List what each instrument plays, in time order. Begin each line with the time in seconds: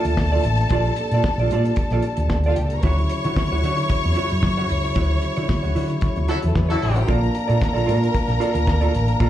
Already playing: tonewheel organ A#2 A3 D4, clean electric guitar F4, string section A4 A5
0.05 fingered electric bass D2, muted clean electric guitar stroke, closed hi-hat
0.17 fingered electric bass D2, muted clean electric guitar stroke, kick, snare
0.32 clean electric guitar F4 A4 D5
0.44 fingered electric bass A1, muted clean electric guitar stroke, closed hi-hat
0.57 muted clean electric guitar stroke, closed hi-hat
0.69 fingered electric bass A#1, tonewheel organ G3, clean electric guitar F4 A4 D5, kick, closed hi-hat
0.85 muted clean electric guitar stroke, closed hi-hat
0.96 muted clean electric guitar stroke, closed hi-hat
1.11 fingered electric bass A#2, clean electric guitar A4 D5, closed hi-hat
1.16 clean electric guitar F4
1.24 muted clean electric guitar stroke, kick, snare
1.38 fingered electric bass A#1, clean electric guitar F4 A4 D5, closed hi-hat
1.50 fingered electric bass A#2, clean electric guitar F4 A4 D5, closed hi-hat
1.65 muted clean electric guitar stroke, closed hi-hat
1.76 muted clean electric guitar stroke, kick, closed hi-hat
1.90 fingered electric bass A#1, clean electric guitar F4 A4 D5, snare, closed hi-hat
2.02 muted clean electric guitar stroke, closed hi-hat
2.17 fingered electric bass D2, muted clean electric guitar stroke, closed hi-hat
2.30 fingered electric bass D2, muted clean electric guitar stroke, kick, snare
2.44 string section F4 F5, clean electric guitar A4 D5, closed hi-hat
2.48 clean electric guitar F4
2.56 fingered electric bass C#2, string section G4 G5, muted clean electric guitar stroke, closed hi-hat
2.65 string section A4 A5
2.70 string section A#4 A#5, muted clean electric guitar stroke, closed hi-hat
2.81 fingered electric bass D2, tonewheel organ C#3 F#3 E4, clean electric guitar E4, string section C#5 C#6, kick, closed hi-hat
2.86 clean electric guitar F#4 C#5
2.98 muted clean electric guitar stroke, closed hi-hat
3.09 muted clean electric guitar stroke, closed hi-hat
3.24 fingered electric bass D3, clean electric guitar E4 F#4 C#5, closed hi-hat
3.36 muted clean electric guitar stroke, kick, snare
3.51 fingered electric bass D2, clean electric guitar E4 F#4 C#5
3.63 fingered electric bass D3, clean electric guitar E4 F#4 C#5, closed hi-hat
3.78 muted clean electric guitar stroke, closed hi-hat
3.89 muted clean electric guitar stroke, kick, closed hi-hat
4.03 fingered electric bass E2, muted clean electric guitar stroke, closed hi-hat
4.15 clean electric guitar E4 F#4 C#5, closed hi-hat
4.29 fingered electric bass F#2, muted clean electric guitar stroke, closed hi-hat
4.43 fingered electric bass F#2, muted clean electric guitar stroke, kick, snare
4.57 clean electric guitar E4 F#4 C#5, closed hi-hat
4.69 fingered electric bass C#2, muted clean electric guitar stroke, closed hi-hat
4.83 muted clean electric guitar stroke, closed hi-hat
4.95 fingered electric bass D2, clean electric guitar E4 F#4 C#5, kick, closed hi-hat
5.10 muted clean electric guitar stroke
5.22 muted clean electric guitar stroke, closed hi-hat
5.36 fingered electric bass D3, clean electric guitar E4 F#4 C#5, closed hi-hat
5.49 muted clean electric guitar stroke, kick, snare
5.63 fingered electric bass D2, clean electric guitar E4 F#4 C#5, closed hi-hat
5.75 fingered electric bass D3, clean electric guitar E4 F#4 C#5, open hi-hat
5.90 muted clean electric guitar stroke, closed hi-hat
6.01 muted clean electric guitar stroke, kick, closed hi-hat
6.16 fingered electric bass D2, muted clean electric guitar stroke, closed hi-hat
6.28 horn section F#3 E4 A4, clean electric guitar E4 F#4 C#5, closed hi-hat
6.42 fingered electric bass E2, muted clean electric guitar stroke, closed hi-hat
6.47 string section A3 A4
6.55 fingered electric bass E2, string section B3 B4, muted clean electric guitar stroke, kick, snare
6.65 string section C#4 C#5, horn section E4, clean electric guitar C#5
6.69 horn section F#3 A4, clean electric guitar E4 F#4
6.73 string section D4 D5
6.81 fingered electric bass A1, string section E4 E5, muted clean electric guitar stroke, open hi-hat
6.90 string section F#4 F#5
6.95 muted clean electric guitar stroke, closed hi-hat
7.00 string section G4 G5
7.08 fingered electric bass A#1, tonewheel organ A#2 A#3 D4, clean electric guitar F4 A4 D5, string section A#4 A#5, kick, closed hi-hat
7.21 muted clean electric guitar stroke, closed hi-hat
7.34 muted clean electric guitar stroke, closed hi-hat
7.48 fingered electric bass A#2, clean electric guitar F4 A4 D5, closed hi-hat
7.62 kick, snare
7.73 fingered electric bass A#1, clean electric guitar F4 A4 D5, closed hi-hat
7.86 fingered electric bass A#2, clean electric guitar F4 A4 D5, closed hi-hat
8.00 muted clean electric guitar stroke, closed hi-hat
8.14 muted clean electric guitar stroke, kick, closed hi-hat
8.28 fingered electric bass A#1, muted clean electric guitar stroke, snare, closed hi-hat
8.40 clean electric guitar F4 A4 D5, closed hi-hat
8.54 fingered electric bass D2, muted clean electric guitar stroke, closed hi-hat
8.67 fingered electric bass D2, muted clean electric guitar stroke, kick, snare
8.81 clean electric guitar F4 A4 D5, closed hi-hat
8.94 fingered electric bass A1, muted clean electric guitar stroke, closed hi-hat
9.07 muted clean electric guitar stroke, closed hi-hat
9.20 fingered electric bass A#1, clean electric guitar F4 A4 D5, kick, closed hi-hat